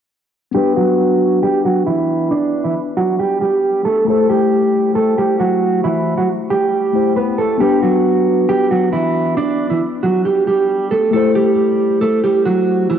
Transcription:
0.52 clean electric guitar G3 G4, tine electric piano B3 D4
0.57 tine electric piano B4
0.76 clean electric guitar F#3 F#4
1.43 clean electric guitar G3 G4
1.65 clean electric guitar F#3 F#4
1.87 clean electric guitar E3 E4
2.31 clean electric guitar D4 D5
2.64 clean electric guitar E3 E4
2.97 clean electric guitar F#3 F#4
3.19 clean electric guitar G3 G4
3.41 clean electric guitar G3 G4
3.85 clean electric guitar A3 A4
4.05 tine electric piano A3 E4, clean electric guitar A3 A4
4.10 tine electric piano C5
4.29 clean electric guitar G3 G4
4.95 clean electric guitar A3 A4
5.18 clean electric guitar G3 G4
5.40 clean electric guitar F#3 F#4
5.84 clean electric guitar E3 E4
6.17 clean electric guitar F#3 F#4
6.50 clean electric guitar G3 G4
6.93 tine electric piano A3 E4 C5
7.16 clean electric guitar B3 B4
7.38 clean electric guitar A3 A4
7.57 clean electric guitar G3 G4, tine electric piano B3 D4
7.63 tine electric piano B4
7.82 clean electric guitar F#3 F#4
8.49 clean electric guitar G3 G4
8.71 clean electric guitar F#3 F#4
8.93 clean electric guitar E3 E4
9.37 clean electric guitar D4 D5
9.70 clean electric guitar E3 E4
10.03 clean electric guitar F#3 F#4
10.25 clean electric guitar G3 G4
10.47 clean electric guitar G3 G4
10.91 clean electric guitar A3 A4
11.11 tine electric piano A3 E4, clean electric guitar A3 A4
11.16 tine electric piano C5
11.35 clean electric guitar G3 G4
12.01 clean electric guitar A3 A4
12.24 clean electric guitar G3 G4
12.45 clean electric guitar F#3 F#4
12.90 clean electric guitar E3 E4

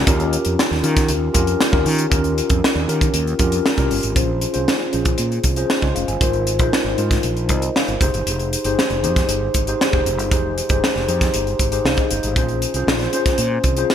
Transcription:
0.07 fretless electric bass D#2, tine electric piano C#4 F4 G4 A#4, kick, closed hi-hat
0.20 closed hi-hat
0.33 closed hi-hat
0.45 fretless electric bass F2, closed hi-hat
0.59 snare
0.71 fretless electric bass D#2, snare
0.83 fretless electric bass D#3, tine electric piano C#4 F4 G4 A#4, closed hi-hat
0.96 kick, snare, closed hi-hat
1.09 fretless electric bass D#2, closed hi-hat
1.34 fretless electric bass F2, tine electric piano C#4 F4 G4 A#4, kick, closed hi-hat
1.47 closed hi-hat
1.61 snare
1.72 fretless electric bass D#2, tine electric piano C#4 F4 G4 A#4, kick
1.86 fretless electric bass D#3, open hi-hat
1.98 closed hi-hat
2.10 fretless electric bass D#2, tine electric piano C#4 F4 G4 A#4, kick, closed hi-hat
2.24 closed hi-hat
2.38 closed hi-hat
2.50 fretless electric bass F2, kick, closed hi-hat
2.64 snare
2.75 fretless electric bass D#2
2.88 fretless electric bass D#3, tine electric piano C#4 F4 G4 A#4, closed hi-hat
3.01 kick, closed hi-hat
3.14 fretless electric bass D#2, closed hi-hat
3.27 closed hi-hat
3.39 fretless electric bass F2, tine electric piano C#4 F4 G4 A#4, kick, closed hi-hat
3.52 closed hi-hat
3.66 snare
3.77 fretless electric bass C2, tine electric piano C#4 F4 G4 A#4, kick, closed hi-hat
3.91 fretless electric bass G1, open hi-hat
4.03 fretless electric bass G#1, closed hi-hat
4.15 fretless electric bass A#1, tine electric piano C#4 F4 G#4 C5, kick, closed hi-hat
4.41 closed hi-hat
4.53 fretless electric bass C2, tine electric piano C#4 F4 G#4 C5, closed hi-hat
4.68 snare
4.92 fretless electric bass A#1, tine electric piano C#4 F4 G#4 C5, closed hi-hat
5.05 kick, closed hi-hat
5.18 fretless electric bass A#2, closed hi-hat
5.32 closed hi-hat
5.44 fretless electric bass C2, kick, closed hi-hat
5.56 tine electric piano C#4 F4 G#4 C5, closed hi-hat
5.70 snare
5.82 fretless electric bass C#2, tine electric piano D#5, kick
5.95 fretless electric bass F1, tine electric piano F5, closed hi-hat
6.08 fretless electric bass G1, tine electric piano G#5, closed hi-hat
6.20 fretless electric bass G#1, tine electric piano D#4 F4 A#4 C5, kick, closed hi-hat
6.33 closed hi-hat
6.47 closed hi-hat
6.59 fretless electric bass A#1, tine electric piano D#4 F4 A#4 C5, kick, closed hi-hat
6.73 snare
6.85 fretless electric bass G#1
6.98 fretless electric bass G#2, tine electric piano D#4 F4 A#4 C5, closed hi-hat
7.11 kick, snare, closed hi-hat
7.23 fretless electric bass A#1, closed hi-hat
7.37 closed hi-hat
7.49 fretless electric bass C2, tine electric piano D#5, kick, closed hi-hat
7.62 closed hi-hat
7.76 tine electric piano F5, snare
7.88 fretless electric bass G1, tine electric piano C5, closed hi-hat
8.01 fretless electric bass F1, tine electric piano D#4 G4 G#4 C5, kick, closed hi-hat
8.14 fretless electric bass G1, closed hi-hat
8.26 fretless electric bass F1, closed hi-hat
8.39 closed hi-hat
8.53 closed hi-hat
8.64 fretless electric bass G1, tine electric piano D#4 G4 G#4 C5, closed hi-hat
8.79 snare
8.90 fretless electric bass F1, closed hi-hat
9.03 fretless electric bass F2, tine electric piano D#4 G4 G#4 C5, closed hi-hat
9.16 kick, snare, closed hi-hat
9.28 fretless electric bass G1, closed hi-hat
9.54 fretless electric bass G#1, kick, closed hi-hat
9.67 tine electric piano D#4 G4 G#4 C5, closed hi-hat
9.81 snare
9.93 fretless electric bass F1, tine electric piano D#4 G4 G#4 C5, kick
10.05 fretless electric bass F1, closed hi-hat
10.18 fretless electric bass G1, closed hi-hat
10.31 fretless electric bass F1, tine electric piano D#4 G4 G#4 C5, kick, closed hi-hat
10.58 closed hi-hat
10.69 fretless electric bass G1, tine electric piano D#4 G4 G#4 C5, kick, closed hi-hat
10.84 snare
10.96 fretless electric bass F1, snare
11.08 fretless electric bass F2, tine electric piano D#4 G4 G#4 C5, closed hi-hat
11.21 kick, snare, closed hi-hat
11.34 fretless electric bass G1, closed hi-hat
11.47 closed hi-hat
11.59 fretless electric bass G#1, kick, closed hi-hat
11.72 tine electric piano D#4 G4 G#4 C5, closed hi-hat
11.85 fretless electric bass C2, tine electric piano F5, snare
11.97 tine electric piano D#5, kick, closed hi-hat
12.11 fretless electric bass G1, tine electric piano C5, closed hi-hat
12.23 fretless electric bass G#1, tine electric piano G#4, closed hi-hat
12.36 fretless electric bass A#1, tine electric piano C#4 F4 G#4 C5, kick, closed hi-hat
12.49 closed hi-hat
12.62 closed hi-hat
12.74 fretless electric bass C2, tine electric piano C#4 F4 G#4 C5, closed hi-hat
12.87 fretless electric bass A#1, snare
12.99 snare, closed hi-hat
13.13 tine electric piano C#4 F4 G#4 C5, closed hi-hat
13.26 kick, snare, closed hi-hat
13.38 fretless electric bass A#2, closed hi-hat
13.64 fretless electric bass C2, kick, closed hi-hat
13.77 tine electric piano C#4 F4 G#4 C5, closed hi-hat
13.90 snare

